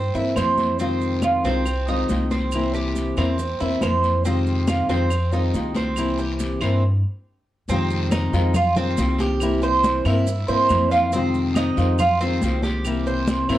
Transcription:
Already playing: G2 C4
0.14 G2 E3 A#3 C4 E4, high conga, maracas
0.36 F2 E3 A#3 C4 E4 C5, high conga, short guiro, claves, maracas
0.58 high conga, short guiro, maracas
0.79 C3 D#3 G#3 C4 F4, high conga, long guiro, maracas
1.01 high conga, maracas
1.22 F4, high conga, short guiro, claves, maracas
1.44 C2 D#3 G#3 C4 F4, high conga, short guiro, maracas
1.66 muted nylon-string guitar stroke, high conga, long guiro, claves, maracas
1.88 D#3 G#3 C4 D#4 F4, high conga, maracas
2.09 C2 D#3 G#3 C4 F4, high conga, short guiro, maracas
2.31 C4, high conga, short guiro, maracas
2.52 C3 E3 A#3 C4 E4, high conga, long guiro, claves, maracas
2.74 G4, high conga, maracas
2.95 high conga, short guiro, maracas
3.17 E2 E3 A#3 C4 E4, short guiro, claves, maracas
3.38 muted nylon-string guitar stroke, high conga, long guiro, maracas
3.60 E2 E3 A#3 C4 E4, high conga, maracas
3.81 F2 E3 A#3 C4 E4 C5, high conga, short guiro, claves, maracas
4.03 short guiro, maracas
4.24 C3 D#3 G#3 C4 F4, high conga, long guiro, maracas
4.46 high conga, maracas
4.67 F4, high conga, short guiro, claves, maracas
4.89 F2 D#3 G#3 C4 F4, high conga, short guiro, maracas
5.10 muted nylon-string guitar stroke, high conga, long guiro, claves, maracas
5.32 D#3 G#3 C4 D#4 F4, high conga, maracas
5.53 C2 D#3 G#3 C4 F4, high conga, short guiro, maracas
5.74 C4, high conga, short guiro, maracas
5.96 C3 E3 A#3 C4 E4, high conga, long guiro, claves, maracas
6.18 G4, high conga, maracas
6.39 high conga, short guiro, maracas
6.61 G2 E3 A#3 C4 E4, short guiro, claves, maracas
7.68 F2 C3 D#3 G#3 C4 F4, high conga, long guiro, maracas
7.90 high conga, maracas
8.12 D#4, high conga, short guiro, claves, maracas
8.33 F2 D#3 G#3 C4 F4, high conga, short guiro, maracas
8.54 F4, muted nylon-string guitar stroke, high conga, low conga, long guiro, claves, maracas
8.76 D#3 G#3 C4 F4, high conga, low conga, maracas
8.97 C2 D#3 G#3 C4 F4, high conga, short guiro, maracas
9.19 G4, high conga, short guiro, maracas
9.40 C3 E3 A#3 C4 E4, high conga, long guiro, claves, maracas
9.62 C5, high conga, maracas
9.84 high conga, short guiro, maracas
10.05 G2 E3 A#3 C4 E4, short guiro, claves, maracas
10.27 muted nylon-string guitar stroke, high conga, long guiro, maracas
10.48 G2 E3 A#3 C4 E4 C5, high conga, maracas
10.69 F2 E3 A#3 C4 E4, high conga, short guiro, claves, maracas
10.91 F4, short guiro, maracas
11.12 C3 D#3 G#3 C4 F4, high conga, long guiro, maracas
11.34 high conga, maracas
11.55 D#4, high conga, short guiro, claves, maracas
11.77 F2 D#3 G#3 C4 F4, high conga, short guiro, maracas
11.99 F4, muted nylon-string guitar stroke, high conga, low conga, long guiro, claves, maracas
12.21 D#3 G#3 C4 F4, high conga, maracas
12.41 C2 D#3 G#3 C4 F4, high conga, short guiro, maracas
12.62 G4, high conga, short guiro, maracas
12.84 C3 E3 A#3 C4 E4, high conga, long guiro, claves, maracas
13.06 C5, high conga, maracas
13.27 high conga, short guiro, maracas
13.49 G2 E3 A#3 C4 E4, short guiro, claves, maracas

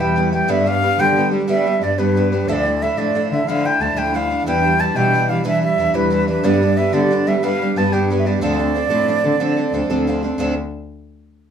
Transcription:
0.00 E2 B2 E3 G3 B3 E4 G5
0.16 E3 G3 B3 E4
0.32 E3 G3 B3 E4 G5
0.48 G2 D3 G3 B3 D4 G4 E5
0.66 G3 B3 D4 G4 F5
0.82 G3 B3 D4 G4
0.99 G2 D3 G3 B3 D4 G4 G5
1.16 G3 B3 D4 G4
1.31 G3 B3 D4 G4
1.47 G2 D3 G3 B3 D4 G4 E5
1.66 G3 B3 D4 G4
1.81 G2 G3 B3 D4 G4 D5
1.98 G2 D3 G3 B3 D4 G4 B4
2.15 G3 B3 D4 G4
2.32 G3 B3 D4 G4
2.48 D2 D3 F3 A3 D4 E4 E5
2.53 D5
2.65 A3 D4 E4
2.82 F3 A3 D4 E4 E5
2.97 A2 D3 F3 A3 D4 E4 D5
3.15 F3 A3 D4 E4
3.31 D3 A3 D4 E4 E5
3.47 D3 F3 A3 D4 E4 F5
3.65 A3 D4 E4 G5
3.80 D2 F3 A3 D4 E4 A5
3.96 D2 D3 F3 A3 D4 E4 G5
4.14 F3 A3 D4 E4 F5
4.30 A3 D4 E4
4.46 E2 B2 E3 G3 D4 E4 G5
4.63 E3 G3 D4 E4
4.79 E3 G3 D4 E4 A5
4.95 E2 B2 E3 G3 D4 E4 G5
5.13 E3 G3 D4 E4
5.29 E3 G3 D4 E4 F5
5.44 E2 B2 E3 G3 D4 E4 E5
5.61 E3 G3 D4 E4 E5
5.78 E2 E3 G3 D4 E4
5.94 E2 B2 E3 G3 D4 E4 B4
6.10 E3 G3 D4 E4
6.27 E3 G3 D4 E4 B4
6.43 G2 D3 G3 B3 D4 G4 D5
6.61 G3 B3 D4 G4
6.77 G3 B3 D4 G4 E5
6.93 G2 D3 G3 B3 D4 G4 D5
7.11 G3 B3 D4 G4
7.27 G3 B3 D4 G4 E5
7.43 G2 D3 G3 B3 D4 G4 F5
7.61 G3 B3 D4 G4
7.76 G2 G3 B3 D4 G4 A5
7.92 G2 D3 G3 B3 D4 G4 G5
8.10 G3 B3 D4 G4
8.18 E5
8.26 G3 B3 D4 G4 D5
8.41 D2 D3 F3 C4 D4 A4 D5
8.59 C4 D4 A4
8.74 F3 C4 D4 A4
8.90 A2 D3 F3 C4 D4 A4
9.08 F3 C4 D4 A4
9.24 D3 C4 D4 A4
9.40 D3 F3 C4 D4 A4
9.57 C4 D4 A4
9.73 D2 F3 C4 D4 A4
9.90 D2 D3 F3 C4 D4 A4
10.07 F3 C4 D4 A4
10.23 C4 D4 A4
10.38 D2 D3 F3 C4 D4 A4

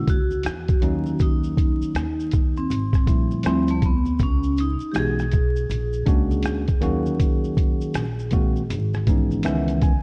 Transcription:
Already playing: D3 G#3 A#3 C#4 F#4
0.07 C#2 F#4, kick, closed hi-hat, maracas
0.31 high conga, maracas
0.43 E2, cross-stick, closed hi-hat, maracas
0.68 kick, closed hi-hat, maracas
0.81 D#2 D#3 F#3 A#3 C#4 D#4, closed hi-hat, high conga, low conga, maracas
1.06 high conga, maracas
1.19 D#4, kick, closed hi-hat, maracas
1.44 maracas
1.57 kick, closed hi-hat, maracas
1.81 muted upright bass stroke, maracas
1.94 D#2, cross-stick, closed hi-hat, maracas
2.20 maracas
2.31 kick, closed hi-hat, low conga, maracas
2.57 C4, maracas
2.70 G#1, closed hi-hat, high conga, maracas
2.93 kick, cross-stick, maracas
3.06 A#1 F3 G3 A3 C4 E4, kick, closed hi-hat, maracas
3.31 high conga, maracas
3.43 D2 F3 G3 A3 C4 E4, cross-stick, closed hi-hat, maracas
3.68 A3, closed hi-hat, maracas
3.82 B3, kick, closed hi-hat, high conga, low conga, maracas
4.06 high conga, maracas
4.19 C#2 C#4, kick, closed hi-hat, maracas
4.43 maracas
4.57 D#4, closed hi-hat, maracas
4.80 muted upright bass stroke, maracas
4.92 B1 E3 G#3 B3 D#4 G4, closed hi-hat, maracas
4.96 F#4 G#4, cross-stick
5.19 cross-stick, maracas
5.31 kick, closed hi-hat, low conga, maracas
5.56 maracas
5.70 A#1, closed hi-hat, high conga, maracas
5.93 maracas
6.06 C#2 G#3 A#3 C#4 D4 F#4, kick, closed hi-hat, maracas
6.31 high conga, maracas
6.43 D2, cross-stick, closed hi-hat, maracas
6.68 kick, closed hi-hat, maracas
6.81 D#2 D#3 F#3 A#3 C#4 F#4, closed hi-hat, high conga, low conga, maracas
7.06 high conga, maracas
7.20 kick, closed hi-hat, maracas
7.44 maracas
7.57 kick, closed hi-hat, maracas
7.81 muted upright bass stroke, maracas
7.94 A#1, cross-stick, closed hi-hat, maracas
8.19 maracas
8.31 D#3 G#3 A#3 C4 F#4, kick, closed hi-hat, low conga, maracas
8.56 maracas
8.70 G#1, closed hi-hat, high conga, maracas
8.94 cross-stick, high conga, maracas
9.07 E3 G#3 B3 C#4 D#4, kick, closed hi-hat, maracas
9.31 high conga, maracas
9.43 C#2 D#3 E3 G#3 B3 C#4 E5, cross-stick, closed hi-hat, maracas
9.68 closed hi-hat, maracas
9.82 G#5, kick, closed hi-hat, high conga, low conga, maracas

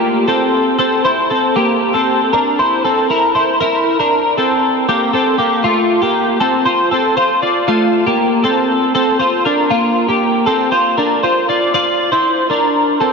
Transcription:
Already playing: A#3 G4
0.28 C4 A4
0.79 C4 A4
1.05 E4 C5
1.30 C4 A4
1.56 A#3 G4
1.94 C4 A4
2.33 D4 A#4
2.59 E4 C5
2.85 C4 A4
3.10 E4 A#4
3.35 E4 C5
3.61 E4 A#4
4.00 D4 A#4
4.38 C4 A4
4.89 A#3 G4
5.13 C4 A4
5.38 A#3 G4
5.64 A3 F4
6.02 A#3 G4
6.40 C4 A4
6.65 F4 C5
6.91 C4 A4
7.17 F4 C5
7.42 F4 D5
7.68 A3 F4
8.06 A#3 G4
8.44 C4 A4
8.95 C4 A4
9.19 F4 C5
9.45 D4 A#4
9.70 A#3 F4
10.08 A#3 G4
10.46 C4 A4
10.72 F4 C5
10.98 D4 A#4
11.23 F4 C5
11.49 F4 D5
11.74 F4 D5
12.12 E4 C5
12.50 D4 A#4
13.01 C4 A4

